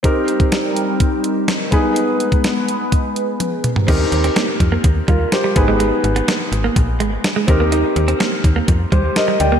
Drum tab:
CC |----------------|----------------|x---------------|----------------|
HH |x-xxx-x-x-x-x-x-|x-xxx-x-x-x-x-x-|x-xxx-x-x-x-x-x-|x-xxx-x-x-x-x-x-|
SD |----o-------o---|----o-----------|----o-------o---|----o-------o---|
T1 |----------------|------------o---|----------------|----------------|
T2 |----------------|--------------o-|----------------|----------------|
FT |----------------|---------------o|----------------|----------------|
BD |o--o----o-----o-|---o----o-------|o-----o-o-o---o-|--------o-----o-|

CC |----------------|
HH |x-xxx-x-x-x-x-x-|
SD |----o-------o---|
T1 |----------------|
T2 |----------------|
FT |----------------|
BD |------o-o-o-----|